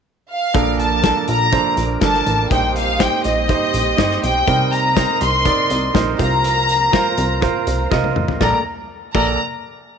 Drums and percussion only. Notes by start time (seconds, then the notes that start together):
0.54 kick, closed hi-hat
0.79 closed hi-hat
1.04 kick, snare, closed hi-hat
1.28 closed hi-hat
1.52 kick, closed hi-hat
1.77 closed hi-hat
2.01 kick, snare, closed hi-hat
2.14 snare
2.27 closed hi-hat
2.51 kick, closed hi-hat
2.76 closed hi-hat
3.00 kick, snare, closed hi-hat
3.24 closed hi-hat
3.49 kick, closed hi-hat
3.74 closed hi-hat
3.98 kick, snare, closed hi-hat
4.11 snare
4.24 closed hi-hat
4.47 kick, closed hi-hat
4.73 closed hi-hat
4.97 kick, snare, closed hi-hat
5.21 closed hi-hat
5.45 kick, closed hi-hat
5.70 closed hi-hat
5.95 kick, snare, closed hi-hat
6.19 kick, closed hi-hat
6.44 closed hi-hat
6.69 closed hi-hat
6.93 kick, snare, closed hi-hat
7.18 closed hi-hat
7.42 kick, closed hi-hat
7.67 closed hi-hat
7.92 kick, snare
8.04 high tom
8.16 mid tom
8.28 floor tom
8.41 kick, snare
9.15 kick, crash